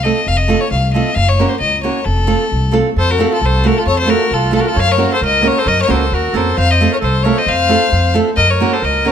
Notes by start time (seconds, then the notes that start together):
0.03 A3 C4 F4 A4 D#5
0.27 F1 F5
0.37 D#5
0.48 A3 C4 F4 A4
0.60 C#5
0.71 C2 F5
0.93 A3 C4 F4 A4 D#5
1.14 F#1 F5
1.29 C#5
1.39 A#3 C#4 F#4 A#4
1.49 C5
1.59 C#2 D#5
1.83 A#3 C#4 F#4 A#4 C#5
2.04 F1 A4
2.27 A3 C4 F4 A4
2.52 C2
2.71 A3 C4 F4 A4
2.96 F2 A4 C5
3.10 F#4 A#4
3.18 A3 C4 F4 A4
3.32 F4 A4
3.41 C2 A4 C5
3.64 A3 C4 F4 F#4 A4 A#4
3.78 F4 A4
3.86 F2 A4 C#5
3.98 A4 C5
4.06 A3 C4 F4 F#4 A4 A#4
4.31 C2 F4 A4
4.51 A3 C4 F4 A4
4.55 F4
4.60 F#4 A#4
4.66 F4 A4
4.76 F#2 C#5 F5
4.87 A#4
4.92 C#5
4.97 A#3 C#4 F#4 A#4
5.11 A4 C5
5.21 C#2 A#4 D#5
5.42 A#3 C#4 F#4 A#4
5.47 C#5
5.57 A4 C5
5.66 F#2 A#4 D#5
5.81 A#4 C#5
5.88 C#2 A#3 C#4 F#4 A4 A#4 C5
6.12 D#2 F#4 A#4
6.33 F2 A#3 C#4 F#4 A4 A#4 C5
6.57 F2 C5 F5
6.70 C5 D#5
6.80 A3 C4 F4 A4
6.91 A#4 C#5
7.01 C2 A4 C5
7.23 A3 C4 F4 A4 A#4 C#5
7.36 C5 D#5
7.47 F2 C5 F5
7.69 A3 C4 F4 A4
7.92 F2
8.14 A3 C4 F4 A4
8.36 F#2 A#4 D#5
8.50 A#4 C#5
8.60 A#3 C#4 F#4 A#4
8.73 A4 C5
8.81 C#2 A#4 D#5
9.05 A#3 C#4 F#4 A#4 C#5